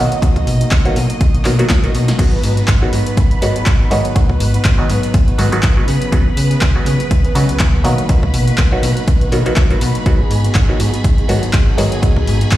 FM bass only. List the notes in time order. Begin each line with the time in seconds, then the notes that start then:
0.22 B1
0.47 B2
0.71 B1
0.96 B2
1.21 B1
1.34 B2
1.45 B2
1.70 B1
1.94 B2
2.19 G#1
2.44 G#2
2.68 G#1
2.93 G#2
3.17 G#1
3.42 G#2
3.56 G#1
3.67 G#1
3.91 G#2
4.16 G#1
4.40 G#2
4.65 G#1
4.90 G#2
5.14 G#1
5.28 G#2
5.39 G#2
5.53 G#1
5.63 G#1
5.88 C#3
6.12 C#2
6.37 C#3
6.62 C#2
6.86 C#3
7.11 C#2
7.35 C#3
7.49 C#2
7.60 C#2
7.85 B2
8.09 B1
8.34 B2
8.58 B1
8.83 B2
9.08 B1
9.21 B2
9.32 B2
9.46 B1
9.57 B1
9.81 B2
10.06 G#1
10.30 G#2
10.55 G#1
10.80 G#2
11.04 G#1
11.29 G#2
11.43 G#1
11.53 G#1
11.78 G#2
12.03 G#1
12.27 G#2
12.52 G#1